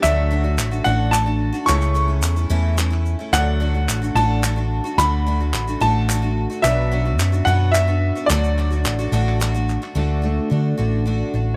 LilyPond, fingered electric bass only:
\new Staff \with { instrumentName = "Fingered electric bass" } { \clef bass \time 6/8 \key d \major \tempo 4. = 73 d,4 a,,8 a,,4. | cis,4 e,8 e,4. | d,4 a,,8 a,,4. | d,4 a,,8 a,,4. |
b,,4 fis,8 fis,4. | d,4 a,,8 a,,4. | d,4 d8 a,,4 a,,8 | }